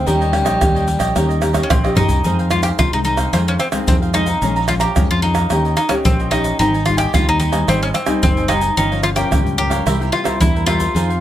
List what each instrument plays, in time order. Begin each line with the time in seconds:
0.06 fingered electric bass D#2, nylon-string guitar D#3 A#3 C#4 G4, tenor saxophone G3, cavaquinho D#4 G4 C#5 D#5, pandeiro, shaker, surdo
0.21 cavaquinho G4 C#5 D#5, pandeiro, shaker
0.33 nylon-string guitar A#3 C#4 G4, muted cavaquinho stroke, pandeiro, tamborim
0.45 fingered electric bass A#1, cavaquinho G4 C#5 D#5, pandeiro, tamborim, shaker, surdo
0.61 fingered electric bass D#2, nylon-string guitar A#2 A#3 C#4 G4, pandeiro, tamborim, shaker, surdo
0.75 cavaquinho G4 C#5 D#5, pandeiro, shaker
0.87 muted cavaquinho stroke, pandeiro, shaker
0.99 fingered electric bass A#1, cavaquinho G4 C#5 D#5, pandeiro, tamborim, shaker, surdo
1.15 fingered electric bass D#2, nylon-string guitar D#3 A#3 C#4 G4, cavaquinho D#4 G4 C#5 D#5, pandeiro, tamborim, shaker, surdo
1.29 cavaquinho G4 C#5 D#5, pandeiro, shaker
1.41 nylon-string guitar A#3 C#4 G4, cavaquinho D#4 G4 C#5 D#5, pandeiro, tamborim, shaker
1.53 nylon-string guitar A#3 C#4 G4, cavaquinho G4 C#5 D#5, pandeiro, tamborim, shaker, surdo
1.63 mandolin C#4
1.70 fingered electric bass A#1, nylon-string guitar A#2, mandolin C4, pandeiro, tamborim, shaker, surdo
1.83 nylon-string guitar A#3 C#4 G4, cavaquinho G4 C#5 D#5, pandeiro, tamborim, shaker
1.95 nylon-string guitar A#3 C#4 G4, cavaquinho D#4 G4 C#5 D#5, mandolin D#4, surdo, pandeiro, shaker
2.08 fingered electric bass C2, cavaquinho G4 C#5 D#5, pandeiro, shaker, surdo
2.24 nylon-string guitar F2 D#3 G#3 C4, fingered electric bass F2, cavaquinho D#4 G#4 C5 F5, pandeiro, shaker, surdo
2.39 cavaquinho G#4 C5 F5, pandeiro, shaker
2.50 nylon-string guitar D#3 G#3 C4, mandolin F4, muted cavaquinho stroke, pandeiro, tamborim, shaker, surdo
2.63 mandolin G4, cavaquinho G#4 C5 F5, pandeiro, tamborim, shaker, surdo
2.78 fingered electric bass C2, nylon-string guitar C3, cavaquinho D#4 G#4 C5, mandolin F4, pandeiro, tamborim, shaker, surdo
2.93 fingered electric bass C2, nylon-string guitar D#3 G#3 C4, mandolin D#4, pandeiro, shaker
3.04 cavaquinho D#4 G#4 C5 F5, mandolin D#4, pandeiro, shaker
3.17 nylon-string guitar D#3 G#3 C4, cavaquinho G#4 C5 F5, pandeiro, tamborim, shaker, surdo
3.33 fingered electric bass F2, nylon-string guitar F2 D#3 G#3 C4, mandolin C4, cavaquinho D#4 G#4 C5 F5, pandeiro, tamborim, shaker, surdo
3.48 mandolin C#4, cavaquinho G#4 C5 F5, pandeiro, shaker
3.59 mandolin C4, muted cavaquinho stroke, pandeiro, tamborim, shaker
3.72 nylon-string guitar D#3 G#3 C4, cavaquinho G#4 C5 F5, pandeiro, tamborim, shaker, surdo
3.87 fingered electric bass F2, nylon-string guitar C3, mandolin C4, pandeiro, shaker, surdo
4.02 cavaquinho G#4 C5 F5, pandeiro, shaker
4.13 nylon-string guitar D#3 G#3 C4, cavaquinho D#4 G#4 C5 F5, mandolin D#4, pandeiro, tamborim, shaker
4.26 cavaquinho G#4 C5 F5, pandeiro, shaker, surdo
4.41 fingered electric bass A#1, nylon-string guitar A#2 F3 G#3 C#4, cavaquinho G#4 C#5 F5 A#5, pandeiro, shaker, surdo
4.56 cavaquinho C#5 F5 A#5, pandeiro, shaker
4.68 nylon-string guitar F3 G#3 C#4, mandolin F4, muted cavaquinho stroke, pandeiro, tamborim, shaker, surdo
4.80 mandolin G4, cavaquinho C#5 F5 A#5, pandeiro, tamborim, shaker, surdo
4.96 nylon-string guitar F2 F3 G#3 C#4, fingered electric bass F2, cavaquinho G#4 C#5 F5 A#5, pandeiro, tamborim, shaker, surdo
5.11 fingered electric bass F2, mandolin F4, pandeiro, shaker
5.22 mandolin D#4, cavaquinho G#4 C#5 F5 A#5, pandeiro
5.35 cavaquinho C#5 F5 A#5, pandeiro, tamborim, shaker, surdo
5.50 fingered electric bass D#2, nylon-string guitar D#3 A#3 C#4 G4, cavaquinho D#4 G4 C#5 D#5, pandeiro, tamborim, shaker, surdo
5.65 cavaquinho G4 C#5 D#5, pandeiro, shaker
5.77 mandolin D#4, pandeiro, tamborim, shaker
5.89 nylon-string guitar A#3 C#4 G4, mandolin C#4, cavaquinho G4 C#5 D#5, pandeiro, tamborim, shaker, surdo
6.05 fingered electric bass A#1, nylon-string guitar A#2, mandolin C4, pandeiro, shaker, surdo
6.19 cavaquinho G4 C#5 D#5, pandeiro, shaker
6.31 nylon-string guitar A#3 C#4 G4, cavaquinho D#4 G4 C#5 D#5, mandolin D#4, pandeiro, tamborim, shaker
6.43 cavaquinho G4 C#5 D#5, pandeiro, shaker, surdo
6.59 fingered electric bass G#1, nylon-string guitar G#2 G3 C4 D#4, mandolin D#4, cavaquinho G4 C5 D#5 G#5, pandeiro, shaker, surdo
6.74 cavaquinho C5 D#5 G#5, pandeiro, shaker
6.85 nylon-string guitar G3 C4 D#4, mandolin F4, pandeiro, tamborim, shaker, surdo
6.97 mandolin G4, cavaquinho C5 D#5 G#5, pandeiro, tamborim, shaker, surdo
7.13 fingered electric bass D#2, nylon-string guitar D#3 G3 C4 D#4, mandolin F4, cavaquinho G4 C5 D#5 G#5, pandeiro, tamborim, shaker, surdo
7.28 fingered electric bass D#2, mandolin D#4, pandeiro, shaker
7.39 mandolin D#4, cavaquinho G4 C5 D#5 G#5, pandeiro, shaker
7.52 nylon-string guitar G3 C4 D#4, cavaquinho C5 D#5 G#5, pandeiro, tamborim, shaker, surdo
7.67 fingered electric bass G#1, nylon-string guitar G#2 G3 C4 D#4, mandolin C4, cavaquinho G4 C5 D#5 G#5, pandeiro, tamborim, shaker, surdo
7.82 mandolin C#4, cavaquinho C5 D#5 G#5, pandeiro, shaker
7.94 mandolin C4, muted cavaquinho stroke, pandeiro, tamborim, shaker
8.06 nylon-string guitar G3 C4 D#4, cavaquinho C5 D#5 G#5, pandeiro, tamborim, shaker, surdo
8.23 fingered electric bass F#1, nylon-string guitar D#3, mandolin C4, pandeiro, shaker, surdo
8.37 cavaquinho C5 D#5 G#5, pandeiro, shaker
8.48 nylon-string guitar G3 C4 D#4, mandolin D#4, cavaquinho G4 C5 D#5 G#5, pandeiro, tamborim, shaker
8.60 cavaquinho C5 D#5 G#5, pandeiro, shaker, surdo
8.77 fingered electric bass G1, nylon-string guitar G2 F3 A#3 C#4, mandolin D#4, cavaquinho G4 A#4 C#5 F5, pandeiro, shaker, surdo
8.91 nylon-string guitar F3 A#3 C#4, cavaquinho A#4 C#5 F5, pandeiro, shaker
9.03 mandolin F4, muted cavaquinho stroke, pandeiro, tamborim, shaker
9.15 nylon-string guitar F3 A#3 C#4, mandolin G4, cavaquinho A#4 C#5 F5, pandeiro, tamborim, shaker, surdo
9.31 fingered electric bass C#2, nylon-string guitar G2, cavaquinho G4 A#4 C#5 F5, pandeiro, tamborim, shaker, surdo
9.46 fingered electric bass C#2, pandeiro, shaker
9.57 nylon-string guitar F3 A#3 C#4, cavaquinho G4 A#4 C#5 F5, mandolin G4, pandeiro
9.70 cavaquinho A#4 C#5 F5, pandeiro, tamborim, shaker, surdo
9.85 fingered electric bass C2, nylon-string guitar C3 G3 A#3 E4, cavaquinho E4 A#4 C5 E5, pandeiro, tamborim, shaker, surdo
9.99 nylon-string guitar G3 A#3 E4, cavaquinho A#4 C5 E5, pandeiro, shaker
10.12 mandolin F4, muted cavaquinho stroke, pandeiro, tamborim
10.24 nylon-string guitar G3 A#3 E4, cavaquinho A#4 C5 E5, pandeiro, tamborim, shaker, surdo
10.40 fingered electric bass E2, nylon-string guitar G2, mandolin E4, pandeiro, shaker, surdo
10.55 cavaquinho A#4 C5 E5, pandeiro, shaker
10.66 nylon-string guitar G3 A#3 E4, cavaquinho E4 A#4 C5 E5, mandolin F4, pandeiro, tamborim, shaker
10.79 cavaquinho A#4 C5 E5, pandeiro, shaker, surdo
10.94 fingered electric bass F2, nylon-string guitar F3 C4 D#4 G#4, cavaquinho D#4 G#4 C5 F5, pandeiro, shaker, surdo
11.09 cavaquinho G#4 C5 F5, pandeiro, shaker